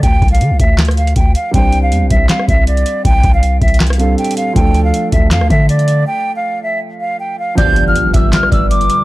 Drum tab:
HH |x-----x-x-x-x-----x-----x-x-x-x--x--x-----x-----|x-----x-----x-----x-----x-----x-----x--x--x-----|x-----x-----x-----x-x-x-x-x-x-x-----x-x-x-x-----|x-----x-----x-----x-----x-----x-----x--x--x-----|
CP |------------------------x-----------------------|------------------------x-----------------------|------------------------x-----------------------|------------------------x-----------------------|
SD |------------------------o--r--------------------|------------------------o--r--------------------|------------------------o--r--------------------|------------------------o--r--------------------|
BD |o-----o-----------o-----------------o-----------|o-----------------o-----------o-----------------|o-----o-----------o-----------------------------|o-----------------o-----------o-----------------|

HH |------------------------------------------------|x-----x-----x-----x-----x-----x-----x--x--x-----|
CP |------------------------------------------------|------------------------x-----------------------|
SD |------------------------------------------------|------------------------o--r--------------------|
BD |------------------------------------------------|o-----------------o-----------o-----------------|